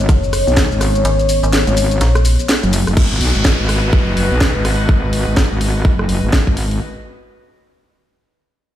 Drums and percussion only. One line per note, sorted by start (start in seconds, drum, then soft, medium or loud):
0.09 kick loud
0.09 closed hi-hat medium
0.09 ride medium
0.09 shaker soft
0.24 shaker soft
0.33 cross-stick medium
0.33 open hi-hat loud
0.33 shaker medium
0.48 shaker soft
0.57 kick loud
0.57 snare loud
0.57 closed hi-hat medium
0.57 ride medium
0.57 shaker soft
0.72 shaker soft
0.81 cross-stick medium
0.81 open hi-hat loud
0.81 shaker medium
0.95 closed hi-hat soft
0.95 shaker soft
1.05 closed hi-hat medium
1.05 ride medium
1.05 shaker soft
1.19 closed hi-hat soft
1.19 shaker soft
1.29 open hi-hat loud
1.29 shaker medium
1.43 closed hi-hat soft
1.43 shaker soft
1.53 snare loud
1.53 closed hi-hat medium
1.53 ride medium
1.53 shaker soft
1.67 closed hi-hat medium
1.67 shaker soft
1.77 open hi-hat loud
1.77 shaker medium
1.91 closed hi-hat medium
1.91 shaker soft
2.01 snare soft
2.01 closed hi-hat medium
2.01 ride medium
2.01 shaker soft
2.15 cross-stick medium
2.15 closed hi-hat soft
2.15 shaker soft
2.25 open hi-hat loud
2.25 shaker medium
2.39 closed hi-hat soft
2.39 shaker soft
2.49 snare loud
2.49 closed hi-hat medium
2.49 ride medium
2.49 shaker soft
2.63 closed hi-hat soft
2.63 shaker soft
2.73 open hi-hat loud
2.73 shaker medium
2.87 cross-stick medium
2.87 open hi-hat medium
2.87 shaker soft
2.97 kick loud
2.97 crash medium
3.21 open hi-hat loud
3.45 kick loud
3.45 snare loud
3.69 cross-stick medium
3.69 open hi-hat loud
3.93 kick loud
4.17 open hi-hat loud
4.41 kick loud
4.41 snare loud
4.65 cross-stick medium
4.65 open hi-hat loud
4.89 kick loud
5.13 open hi-hat loud
5.37 kick loud
5.37 snare loud
5.61 open hi-hat loud
5.85 kick loud
5.99 cross-stick medium
6.09 open hi-hat loud
6.33 kick loud
6.33 snare loud
6.47 kick medium
6.57 open hi-hat loud
6.71 open hi-hat medium